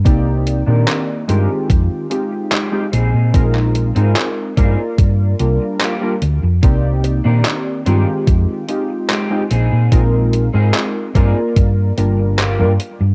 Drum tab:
HH |x-x-x-x-x-x-x-x-|x-xxx-x-x-x-x-x-|x-x-x-x-x-x-x-x-|x-x-x-x-x-x-x-x-|
CP |----x-------x---|-x--x-------x---|----x-------x---|----x-------x---|
BD |o-------o-------|o-----o-o-------|o-------o-------|o-----o-o-------|